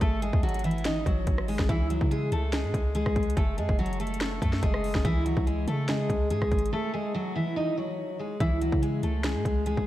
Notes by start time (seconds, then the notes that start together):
0.01 G#1 A3 A4, kick, closed hi-hat
0.22 G#3 G#4, closed hi-hat
0.33 D#2, kick
0.43 G#1 F#3 F#4, closed hi-hat
0.49 closed hi-hat
0.54 closed hi-hat
0.59 closed hi-hat
0.64 E3 E4, closed hi-hat
0.71 closed hi-hat
0.78 closed hi-hat
0.85 D#4 D#5, snare, closed hi-hat
1.06 G#1 F#3 F#4, kick, closed hi-hat
1.27 G#1, kick, closed hi-hat
1.38 cross-stick
1.48 G#3 G#4, open hi-hat
1.59 G#1, kick, snare
1.69 C#2 E3 E4, kick, closed hi-hat
1.90 F#3 F#4, closed hi-hat
2.01 C#3, kick
2.11 G#3 G#4, closed hi-hat
2.32 C#2 A3 A4, closed hi-hat
2.53 G#3 G#4, snare, closed hi-hat
2.64 G#2
2.74 C#2, kick, closed hi-hat
2.95 G#3 G#4, closed hi-hat
3.06 C#2, kick, cross-stick
3.16 kick, closed hi-hat
3.23 closed hi-hat
3.30 closed hi-hat
3.37 F#1 A3 A4, kick, closed hi-hat
3.58 F#2 G#3 G#4, closed hi-hat
3.69 F#1, kick
3.79 F#1 F#3 F#4, closed hi-hat
3.86 closed hi-hat
3.93 closed hi-hat
4.00 A3 A4, closed hi-hat
4.07 closed hi-hat
4.14 closed hi-hat
4.21 snare, closed hi-hat
4.42 F#2 A3 A4, kick, closed hi-hat
4.53 snare
4.63 F#1 G#3 G#4, kick, closed hi-hat
4.74 cross-stick
4.84 open hi-hat
4.95 F#1, kick, snare
5.05 C#2 E3 E4, kick, closed hi-hat
5.26 F#3 F#4, closed hi-hat
5.37 C#2, kick
5.47 G#3 G#4, closed hi-hat
5.68 C#3 A3 A4, closed hi-hat
5.88 G#3 G#4, snare, closed hi-hat
6.10 C#2, kick, closed hi-hat
6.30 G#2 G#3 G#4, closed hi-hat
6.42 C#2, kick, cross-stick
6.52 G#1, kick, closed hi-hat
6.59 closed hi-hat
6.66 closed hi-hat
6.73 A3 A4
6.94 G#3 G#4
7.14 F#3 F#4
7.35 E3 E4
7.56 D#4 D#5
7.77 F#3 F#4
8.19 G#3 G#4
8.40 C#2 E3 E4, kick, closed hi-hat
8.61 F#3 F#4, closed hi-hat
8.72 C#3, kick
8.82 G#3 G#4, closed hi-hat
9.03 C#2 A3 A4, closed hi-hat
9.24 G#3 G#4, snare, closed hi-hat
9.35 G#2
9.45 C#2, kick, closed hi-hat
9.66 G#3 G#4, closed hi-hat
9.77 C#2, kick